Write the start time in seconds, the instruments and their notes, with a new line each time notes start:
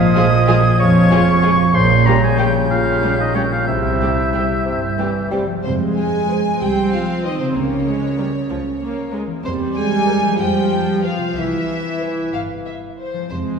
Already playing: double bass section A#1, cello section A#2, harp A#2 G#3 F4 G#4 F5 G#5, bassoon F3, clarinet D#5, oboe D#6, flute G#6
0.00 harp F3
0.15 viola section F3, harp G#3, french horn section G#3 F4, violin section F4 G#4
0.47 viola section F3, french horn section G#3 F4, violin section F4 G#4, harp C#5
0.64 harp G#4
0.79 double bass section F1, cello section F2, clarinet C#5, harp F5, oboe C#6
0.95 harp C#6
1.10 viola section F3, french horn section G#3 F4, violin section F4 G#4, harp F5
1.26 harp C#5
1.41 viola section F3, harp G#3, french horn section G#3 F4, violin section F4 G#4
1.58 harp F3
1.74 double bass section A#1, harp A#2, cello section A#2, bassoon C#3, clarinet C5, oboe C6, flute G6
1.90 harp A#3
2.06 harp G3, french horn section G3 C#4, viola section G3, violin section C#4 G4, clarinet A#4, oboe A#5
2.24 clarinet G#4, oboe G#5
2.37 french horn section G3 C#4, viola section G3, violin section C#4 G4, clarinet G4, harp C#5, oboe G5
2.54 harp G4
2.70 double bass section A#1, cello section A#2, clarinet F4, oboe F5, harp G5
2.86 harp C#6
3.02 french horn section G3 C#4, viola section G3, violin section C#4 G4, harp G5
3.18 clarinet D#4, harp C#5, oboe D#5
3.35 french horn section G3 C#4, viola section G3, harp G3, clarinet C#4, violin section C#4 G4, oboe C#5
3.51 harp A#3, clarinet F4, oboe F5
3.67 double bass section C2, harp C3, bassoon C3, cello section C3, clarinet E4, oboe E5
3.84 harp C4
3.99 french horn section G3 C4, harp G3, viola section G3, violin section C4 G4
4.17 harp G4
4.33 french horn section G3 C4, viola section G3, violin section C4 G4
4.49 harp G4
4.65 double bass section G1, cello section G2, bassoon C3, harp G5
4.82 harp C6
4.98 bassoon E3, french horn section G3 C4, viola section G3, violin section C4 G4, harp G5
5.15 harp C5
5.31 bassoon G3, harp G3, viola section G3, french horn section G3 C4, violin section C4 G4
5.46 harp F3 C4
5.51 harp G#3
5.55 harp F4
5.60 harp C5
5.65 double bass section F2, cello section C3, viola section G#3, vibraphone C4, violin section C5
5.97 cello section G#3, vibraphone G#4, violin section G#5
6.30 violin section C5
6.61 double bass section C2, cello section G3, viola section C4, vibraphone G4, violin section G5
6.91 cello section F3, vibraphone F4, violin section F5
7.24 cello section D#3, vibraphone D#4, violin section C5 D#5
7.38 cello section C3, harp C#3, vibraphone C4, violin section C5
7.42 harp A#3
7.47 harp F4
7.51 harp A#4, violin section C#5
7.55 double bass section C#2, cello section C#3, viola section A#3, vibraphone C#4
7.86 viola section G#3
8.18 viola section G3, violin section A#4
8.49 double bass section C#2, viola section F3
8.81 viola section A#3
9.12 viola section G#3, violin section A#4
9.26 harp E3
9.31 harp A#3
9.35 harp C4
9.40 harp C5
9.44 double bass section E2, cello section C3, viola section G3, vibraphone C4, violin section C5
9.76 cello section G#3, vibraphone G#4, violin section G#5
10.08 violin section A#4
10.22 harp F3
10.26 harp G#3
10.31 harp C4
10.36 harp C5, violin section G5
10.40 double bass section F2, viola section F3, cello section G3, vibraphone G4
11.03 cello section F3, vibraphone F4, violin section C5 F5
11.18 harp C3
11.22 harp G3
11.27 harp C4
11.32 harp C5, violin section E5
11.36 double bass section C2, cello section E3, viola section E3, vibraphone E4
12.01 violin section C5
12.33 double bass section G1, violin section F5
12.65 violin section E5
12.98 violin section C5
13.13 harp F3
13.18 harp G#3
13.22 harp C4
13.27 double bass section F2, harp C5, violin section C5
13.31 cello section C3, viola section G#3, vibraphone C4